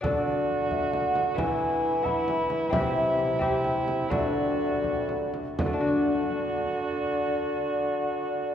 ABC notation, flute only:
X:1
M:6/8
L:1/8
Q:3/8=84
K:Dmix
V:1 name="Flute"
d d2 e f2 | ^g3 b3 | e e2 g3 | d4- d z |
d6- | d6 |]